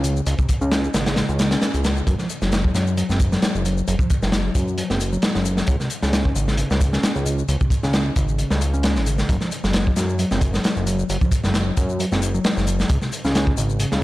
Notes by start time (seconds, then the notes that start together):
Already playing: C#2
0.04 C#3, closed hi-hat, shaker
0.16 shaker
0.27 C#2 C#3, closed hi-hat, shaker
0.39 C3, kick, shaker
0.49 kick, closed hi-hat, shaker
0.61 C#2 C#4, shaker
0.72 snare, closed hi-hat, shaker
0.84 shaker
0.94 G#1 C#3, snare, closed hi-hat, shaker
1.06 snare, closed hi-hat, shaker
1.16 C#3, snare, closed hi-hat, shaker
1.29 C#2 G#3, shaker
1.39 snare, closed hi-hat, shaker
1.51 C#4, snare, closed hi-hat, shaker
1.62 snare, closed hi-hat, shaker
1.74 C#2, closed hi-hat, shaker
1.84 C#3, snare, closed hi-hat, shaker
1.97 shaker
2.07 F#1 F#3, kick, closed hi-hat, shaker
2.19 F3, snare, shaker
2.30 closed hi-hat, shaker
2.42 F#1 F#3, snare, shaker
2.52 snare, closed hi-hat, shaker
2.64 kick
2.75 F#2 F#3, snare, closed hi-hat, shaker
2.87 shaker
2.97 F#3, closed hi-hat, shaker
3.09 F#1 C4, snare, shaker
3.20 kick, closed hi-hat, shaker
3.32 F#3, snare, shaker
3.42 snare, closed hi-hat, shaker
3.55 F#1, shaker
3.65 F#3, closed hi-hat, shaker
3.78 shaker
3.88 F#1 F#3, closed hi-hat, shaker
3.99 F3, kick, shaker
4.10 kick, closed hi-hat, shaker
4.22 F#1 F#3, snare, shaker
4.32 snare, closed hi-hat, shaker
4.55 F#2 F#3, kick, closed hi-hat, shaker
4.68 shaker
4.78 F#3, closed hi-hat, shaker
4.90 F#1 C4, snare, shaker
5.01 closed hi-hat, shaker
5.13 F#3, shaker
5.22 snare, closed hi-hat, shaker
5.35 F#1, snare, shaker
5.45 F#3, closed hi-hat, shaker
5.57 snare, shaker
5.67 C#2 C#3, kick, closed hi-hat, shaker
5.80 C3, snare, shaker
5.90 closed hi-hat, shaker
6.03 C#2 C#4, snare, shaker
6.13 snare, closed hi-hat, shaker
6.25 kick
6.36 G#1 C#3, closed hi-hat, shaker
6.48 snare, shaker
6.57 C#3, closed hi-hat, shaker
6.71 C#2 G3, snare, shaker
6.81 kick, closed hi-hat, shaker
6.93 C#4, snare, shaker
7.03 snare, closed hi-hat, shaker
7.15 C#2, shaker
7.26 C#3, closed hi-hat, shaker
7.38 shaker
7.48 C#2 C#3, closed hi-hat, shaker
7.61 C3, kick, shaker
7.70 kick, closed hi-hat, shaker
7.83 C#2 C#4, snare, shaker
7.93 snare, closed hi-hat, shaker
8.16 G#1 C#3, kick, closed hi-hat, shaker
8.28 shaker
8.39 C#3, closed hi-hat, shaker
8.50 C#2 G3, snare, shaker
8.61 closed hi-hat, shaker
8.74 C#4, shaker
8.83 snare, closed hi-hat, shaker
8.96 G#1, snare, shaker
9.06 C#3, closed hi-hat, shaker
9.18 snare, shaker
9.29 F#1 F#3, kick, closed hi-hat, shaker
9.41 F3, snare, shaker
9.51 closed hi-hat, shaker
9.64 F#1 F#3, snare, shaker
9.73 snare, closed hi-hat, shaker
9.87 kick
9.96 F#2 F#3, snare, closed hi-hat, shaker
10.09 shaker
10.19 F#3, closed hi-hat, shaker
10.31 F#1 C4, snare, shaker
10.41 kick, closed hi-hat, shaker
10.54 F#3, snare, shaker
10.64 snare, closed hi-hat, shaker
10.76 F#1, shaker
10.87 F#3, closed hi-hat, shaker
10.99 shaker
11.09 F#1 F#3, closed hi-hat, shaker
11.21 F3, kick, shaker
11.32 kick, closed hi-hat, shaker
11.44 F#1 F#3, snare, shaker
11.54 snare, closed hi-hat, shaker
11.77 F#2 F#3, kick, closed hi-hat, shaker
11.89 shaker
12.00 F#3, closed hi-hat, shaker
12.12 F#1 C4, snare, shaker
12.22 closed hi-hat, shaker
12.34 F#3, shaker
12.44 snare, closed hi-hat, shaker
12.57 F#1, snare, shaker
12.67 F#3, closed hi-hat, shaker
12.80 snare, shaker
12.89 C#2 C#3, kick, closed hi-hat, shaker
13.02 C3, snare, shaker
13.12 closed hi-hat, shaker
13.25 C#2 C#4, snare, shaker
13.35 snare, closed hi-hat, shaker
13.47 kick
13.57 G#1 C#3, closed hi-hat, shaker
13.69 shaker
13.80 C#3, closed hi-hat, shaker
13.92 C#2 G3, snare, shaker